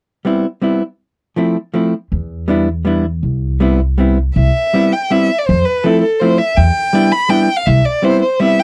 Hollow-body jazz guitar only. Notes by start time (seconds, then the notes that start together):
0.25 G3 B3 C4 E4
0.62 G3 B3 C4 E4
1.36 F3 A3 C4 E4
1.74 F3 A3 C4 E4
2.48 G3 B3 D4 E4
2.85 G3 B3 D4 E4
3.60 G3 B3 C4 E4
3.98 G3 B3 C4 E4
4.73 G3 B3 C4 E4
5.10 G3 B3 C4 E4
5.84 F3 A3 C4 E4
6.21 F3 A3 C4 E4
6.93 G3 B3 D4 E4
7.29 G3 B3 D4 E4
8.02 G3 B3 C4 E4
8.40 G3 B3 C4 E4